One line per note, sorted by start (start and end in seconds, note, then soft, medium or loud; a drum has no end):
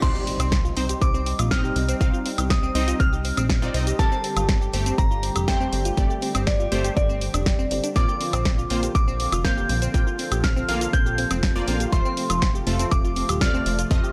0.02 0.12 C2 loud
0.02 3.95 G3 medium
0.02 0.74 C4 medium
0.02 0.09 C4 medium
0.02 3.95 C4 medium
0.02 0.74 D#4 medium
0.02 3.95 D#4 medium
0.02 0.74 D5 medium
0.02 0.92 C6 loud
0.02 kick loud
0.02 closed hi-hat medium
0.02 crash loud
0.02 impact medium
0.02 shaker medium
0.15 0.25 G4 medium
0.15 shaker soft
0.27 0.31 C4 medium
0.27 open hi-hat loud
0.40 0.72 C2 loud
0.40 0.46 C4 loud
0.40 closed hi-hat medium
0.40 high woodblock medium
0.40 shaker medium
0.52 0.59 C4 medium
0.52 kick loud
0.52 snare loud
0.52 closed hi-hat medium
0.52 shaker medium
0.65 0.71 F4 medium
0.65 shaker soft
0.77 0.96 C2 medium
0.77 1.48 C4 medium
0.77 0.84 C4 medium
0.77 1.48 D#4 medium
0.77 1.48 C5 medium
0.77 open hi-hat loud
0.89 0.99 G4 medium
0.89 closed hi-hat medium
0.89 shaker medium
1.01 1.34 C2 medium
1.01 1.06 C4 medium
1.01 1.46 D6 medium
1.01 kick loud
1.01 closed hi-hat medium
1.01 shaker medium
1.14 1.21 C4 loud
1.14 shaker soft
1.26 1.33 C4 medium
1.26 open hi-hat loud
1.39 1.71 A#1 medium
1.39 1.46 F4 medium
1.39 closed hi-hat medium
1.39 high woodblock medium
1.39 shaker medium
1.51 1.98 C4 medium
1.51 1.58 C4 medium
1.51 1.98 D#4 medium
1.51 1.98 D#5 loud
1.51 2.41 F6 medium
1.51 kick loud
1.51 snare loud
1.51 closed hi-hat medium
1.51 shaker medium
1.64 1.74 G4 medium
1.64 shaker soft
1.76 1.95 C2 medium
1.76 1.80 C4 medium
1.76 open hi-hat loud
1.89 1.95 C4 loud
1.89 closed hi-hat medium
1.89 shaker medium
2.01 2.10 C2 loud
2.01 2.72 C4 medium
2.01 2.08 C4 medium
2.01 2.72 D#4 medium
2.01 2.72 F5 medium
2.01 kick loud
2.01 closed hi-hat medium
2.01 shaker medium
2.13 2.20 F4 medium
2.13 shaker soft
2.26 2.32 C4 medium
2.26 open hi-hat loud
2.38 2.70 C2 loud
2.38 2.48 G4 medium
2.38 closed hi-hat medium
2.38 high woodblock medium
2.38 shaker medium
2.50 2.54 C4 medium
2.50 2.95 D#6 medium
2.50 kick loud
2.50 snare loud
2.50 closed hi-hat medium
2.50 shaker medium
2.63 2.70 C4 medium
2.63 shaker soft
2.75 2.94 C2 medium
2.75 3.60 C4 loud
2.75 2.82 C4 medium
2.75 3.60 D#4 medium
2.75 3.60 D#5 loud
2.75 open hi-hat loud
2.88 2.94 F4 medium
2.88 closed hi-hat medium
2.88 shaker medium
3.00 3.32 C2 medium
3.00 3.07 C4 medium
3.00 3.89 F6 medium
3.00 kick loud
3.00 closed hi-hat medium
3.00 shaker medium
3.13 3.22 G4 medium
3.13 shaker soft
3.25 3.29 C4 medium
3.25 open hi-hat loud
3.37 3.70 A#1 medium
3.37 3.44 C4 loud
3.37 closed hi-hat medium
3.37 high woodblock medium
3.37 shaker medium
3.50 3.56 C4 medium
3.50 kick loud
3.50 snare loud
3.50 closed hi-hat medium
3.50 shaker medium
3.62 3.71 C4 medium
3.62 3.71 D#4 medium
3.62 3.69 F4 medium
3.62 3.71 D5 medium
3.62 shaker soft
3.74 3.93 C2 medium
3.74 3.81 C4 medium
3.74 3.96 C4 medium
3.74 3.96 D#4 medium
3.74 3.96 D#5 medium
3.74 open hi-hat loud
3.87 3.97 G4 medium
3.87 closed hi-hat medium
3.87 shaker medium
3.99 4.09 G1 loud
3.99 11.89 D3 medium
3.99 7.92 G3 medium
3.99 4.03 C4 medium
3.99 4.71 G4 medium
3.99 7.92 G4 medium
3.99 4.71 A4 medium
3.99 4.71 A#4 medium
3.99 4.89 A5 loud
3.99 kick loud
3.99 closed hi-hat medium
3.99 shaker medium
4.12 4.18 C4 loud
4.12 shaker soft
4.24 4.31 C4 medium
4.24 open hi-hat loud
4.37 4.69 G1 loud
4.37 4.43 F4 medium
4.37 closed hi-hat medium
4.37 high woodblock medium
4.37 shaker medium
4.49 4.55 C4 medium
4.49 kick loud
4.49 snare loud
4.49 closed hi-hat medium
4.49 shaker medium
4.61 4.71 G4 medium
4.61 shaker soft
4.73 4.92 G1 medium
4.73 5.45 A3 medium
4.73 4.78 C4 medium
4.73 5.45 G4 medium
4.73 open hi-hat loud
4.86 4.93 C4 loud
4.86 closed hi-hat medium
4.86 shaker medium
4.98 5.31 G1 medium
4.98 5.05 C4 medium
4.98 5.43 A#5 medium
4.98 kick loud
4.98 closed hi-hat medium
4.98 shaker medium
5.11 5.17 F4 medium
5.11 shaker soft
5.23 5.30 C4 medium
5.23 open hi-hat loud
5.36 5.68 F1 medium
5.36 5.45 G4 medium
5.36 closed hi-hat medium
5.36 high woodblock medium
5.36 shaker medium
5.48 5.95 A3 medium
5.48 5.52 C4 medium
5.48 5.95 G4 medium
5.48 5.95 C5 loud
5.48 6.37 G5 loud
5.48 kick loud
5.48 snare loud
5.48 closed hi-hat medium
5.48 shaker medium
5.60 5.67 C4 loud
5.60 shaker soft
5.73 5.92 G1 medium
5.73 5.79 C4 medium
5.73 open hi-hat loud
5.85 5.92 F4 medium
5.85 closed hi-hat medium
5.85 shaker medium
5.97 6.07 G1 loud
5.97 6.69 A3 medium
5.97 6.04 C4 medium
5.97 6.69 G4 medium
5.97 6.69 D5 medium
5.97 kick loud
5.97 closed hi-hat soft
5.97 shaker medium
6.10 6.20 G4 medium
6.10 shaker soft
6.22 6.26 C4 medium
6.22 open hi-hat loud
6.35 6.67 G1 loud
6.35 6.41 C4 loud
6.35 closed hi-hat medium
6.35 high woodblock medium
6.35 shaker medium
6.47 6.54 C4 medium
6.47 6.92 D5 medium
6.47 kick loud
6.47 snare loud
6.47 closed hi-hat medium
6.47 shaker medium
6.60 6.66 F4 medium
6.60 shaker soft
6.72 6.91 G1 medium
6.72 7.56 A3 loud
6.72 6.79 C4 medium
6.72 7.56 G4 medium
6.72 7.56 C5 loud
6.72 open hi-hat loud
6.84 6.94 G4 medium
6.84 closed hi-hat medium
6.84 shaker medium
6.97 7.29 G1 medium
6.97 7.01 C4 medium
6.97 7.86 D5 medium
6.97 kick loud
6.97 closed hi-hat medium
6.97 shaker medium
7.09 7.16 C4 loud
7.09 shaker soft
7.21 7.32 C4 medium
7.21 open hi-hat loud
7.34 7.66 F1 medium
7.34 7.41 D4 medium
7.34 closed hi-hat medium
7.34 high woodblock medium
7.34 shaker medium
7.46 7.50 G4 medium
7.46 kick loud
7.46 snare loud
7.46 closed hi-hat soft
7.46 shaker medium
7.59 7.65 C4 loud
7.59 shaker soft
7.71 7.81 G1 medium
7.71 7.78 C4 medium
7.71 open hi-hat loud
7.84 7.90 D4 medium
7.84 closed hi-hat medium
7.84 shaker medium
7.96 8.05 A#1 loud
7.96 14.12 F3 medium
7.96 8.67 A#3 medium
7.96 8.03 C4 medium
7.96 8.67 F4 medium
7.96 14.12 F4 medium
7.96 8.67 D5 medium
7.96 8.85 D6 loud
7.96 kick loud
7.96 closed hi-hat soft
7.96 shaker medium
8.08 8.18 G4 medium
8.08 shaker soft
8.21 8.25 C4 medium
8.21 open hi-hat loud
8.33 8.65 A#1 loud
8.33 8.40 C4 loud
8.33 closed hi-hat medium
8.33 high woodblock medium
8.33 shaker medium
8.45 8.52 C4 medium
8.45 kick loud
8.45 snare loud
8.45 closed hi-hat medium
8.45 shaker medium
8.58 8.65 F4 medium
8.58 shaker soft
8.70 8.89 A#1 medium
8.70 9.42 A#3 medium
8.70 8.77 C4 medium
8.70 9.42 F4 medium
8.70 9.42 C5 medium
8.70 open hi-hat loud
8.83 8.93 G4 medium
8.83 closed hi-hat medium
8.83 shaker medium
8.95 9.27 A#1 medium
8.95 8.99 C4 medium
8.95 9.40 D6 medium
8.95 kick loud
8.95 closed hi-hat medium
8.95 shaker medium
9.08 9.14 C4 loud
9.08 shaker soft
9.20 9.27 C4 medium
9.20 open hi-hat loud
9.32 9.65 F1 medium
9.32 9.39 F4 medium
9.32 closed hi-hat medium
9.32 high woodblock medium
9.32 shaker medium
9.45 9.91 A#3 loud
9.45 9.51 C4 medium
9.45 9.91 F4 medium
9.45 9.91 F5 loud
9.45 10.34 G6 medium
9.45 kick loud
9.45 snare loud
9.45 closed hi-hat medium
9.45 shaker medium
9.57 9.67 G4 medium
9.57 shaker soft
9.69 9.88 A#1 medium
9.69 9.73 C4 medium
9.69 open hi-hat loud
9.82 9.89 C4 loud
9.82 closed hi-hat medium
9.82 shaker medium
9.94 10.04 A#1 loud
9.94 10.66 A#3 medium
9.94 10.01 C4 medium
9.94 10.66 F4 medium
9.94 11.90 A4 medium
9.94 10.66 G5 medium
9.94 kick loud
9.94 closed hi-hat medium
9.94 shaker medium
10.07 10.13 F4 medium
10.07 shaker soft
10.19 10.26 C4 medium
10.19 open hi-hat loud
10.32 10.64 A#1 loud
10.32 10.41 G4 medium
10.32 closed hi-hat medium
10.32 high woodblock medium
10.32 shaker medium
10.44 10.48 C4 medium
10.44 10.89 F6 medium
10.44 kick loud
10.44 snare loud
10.44 closed hi-hat medium
10.44 shaker medium
10.56 10.63 C4 loud
10.56 shaker soft
10.69 10.87 A#1 medium
10.69 11.53 A#3 loud
10.69 10.75 C4 medium
10.69 11.53 F4 medium
10.69 11.53 F5 loud
10.69 open hi-hat loud
10.81 10.88 F4 medium
10.81 closed hi-hat medium
10.81 shaker medium
10.93 11.26 A#1 medium
10.93 11.00 C4 medium
10.93 11.83 G6 medium
10.93 kick loud
10.93 closed hi-hat medium
10.93 shaker medium
11.06 11.16 G4 medium
11.06 shaker soft
11.18 11.22 C4 medium
11.18 open hi-hat loud
11.31 11.63 F1 medium
11.31 11.37 C4 loud
11.31 closed hi-hat medium
11.31 high woodblock medium
11.31 shaker medium
11.43 11.50 C4 medium
11.43 kick loud
11.43 snare loud
11.43 closed hi-hat medium
11.43 shaker medium
11.56 11.65 A#3 medium
11.56 11.65 F4 medium
11.56 11.62 F4 medium
11.56 11.65 D5 loud
11.56 shaker soft
11.68 11.87 A#1 medium
11.68 11.90 A#3 medium
11.68 11.75 C4 medium
11.68 11.90 F4 medium
11.68 11.90 F5 loud
11.68 open hi-hat loud
11.80 11.90 G4 medium
11.80 closed hi-hat medium
11.80 shaker medium
11.92 12.02 F1 loud
11.92 14.12 C3 medium
11.92 12.64 A3 medium
11.92 14.12 A3 medium
11.92 11.97 C4 medium
11.92 12.64 F4 medium
11.92 12.64 C5 medium
11.92 12.82 C6 loud
11.92 kick loud
11.92 closed hi-hat medium
11.92 shaker medium
12.05 12.12 C4 loud
12.05 shaker soft
12.17 12.24 C4 medium
12.17 open hi-hat loud
12.30 12.62 F1 loud
12.30 12.37 F4 medium
12.30 closed hi-hat medium
12.30 high woodblock medium
12.30 shaker medium
12.42 12.49 C4 medium
12.42 kick loud
12.42 snare loud
12.42 closed hi-hat medium
12.42 shaker medium
12.55 12.65 G4 medium
12.55 shaker soft
12.67 12.86 F1 medium
12.67 13.38 A3 medium
12.67 12.71 C4 medium
12.67 13.38 F4 medium
12.67 13.38 A4 medium
12.67 open hi-hat loud
12.79 12.86 C4 loud
12.79 closed hi-hat medium
12.79 shaker medium
12.91 13.24 F1 medium
12.91 12.99 C4 medium
12.91 13.36 D6 medium
12.91 kick loud
12.91 closed hi-hat medium
12.91 shaker medium
13.04 13.11 F4 medium
13.04 shaker soft
13.16 13.23 C4 medium
13.16 open hi-hat loud
13.29 13.61 D#1 medium
13.29 13.39 G4 medium
13.29 closed hi-hat medium
13.29 high woodblock medium
13.29 shaker medium
13.41 13.88 A3 medium
13.41 13.45 C4 medium
13.41 13.88 F4 medium
13.41 13.88 D5 loud
13.41 14.12 F6 medium
13.41 kick loud
13.41 snare loud
13.41 closed hi-hat medium
13.41 shaker medium
13.54 13.60 C4 loud
13.54 shaker soft
13.66 13.85 F1 loud
13.66 13.73 C4 medium
13.66 open hi-hat loud
13.79 13.85 F4 medium
13.79 closed hi-hat medium
13.79 shaker medium
13.91 14.00 F1 loud
13.91 14.12 A3 medium
13.91 13.98 C4 medium
13.91 14.12 F4 medium
13.91 14.12 D#5 medium
13.91 kick loud
13.91 closed hi-hat medium
13.91 shaker medium
14.04 14.12 G4 medium
14.04 shaker soft